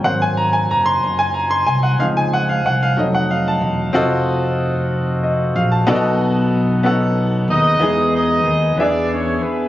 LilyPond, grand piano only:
<<
  \new Staff \with { instrumentName = "Grand piano" } { \time 6/8 \key f \phrygian \tempo 4. = 62 << { ges''16 aes''16 bes''16 aes''16 bes''16 c'''8 aes''16 bes''16 c'''16 aes''16 ges''16 | f''16 aes''16 ges''16 f''16 ges''16 f''16 ees''16 ges''16 f''16 a''8 r16 | r2 ees''8 f''16 a''16~ | a''16 r2 r8. |
\key e \major r2. | } \\ { r2. | r2. | <c' f' ges' a' ees''>4 r2 | <ces' ees' ges' a' d'' ees''>4 r8 <ces' des' ees' ges' a' ges''>4 r8 |
<b dis' e' gis' dis''>4 r8 <b d' e' gis' e''>4 r8 | } >> }
  \new Staff \with { instrumentName = "Grand piano" } { \clef bass \time 6/8 \key f \phrygian <ges bes c'>8 r2 r8 | <f c' ees'>4. <ges a ees'>8 r4 | r2. | ces4. r4. |
\key e \major gis4. e4. | }
>>